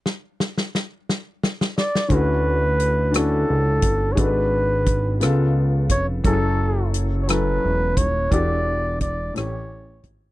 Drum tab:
HH |------------|x---x-x---x-|x---x-x---x-|x---x-x---x-|
SD |o-ooo-o-oooo|------r-----|------r-----|------r-----|
BD |------------|o---------o-|o---o-----o-|o---------o-|

HH |x---x-x---x-|
SD |------r-----|
BD |o---o-----o-|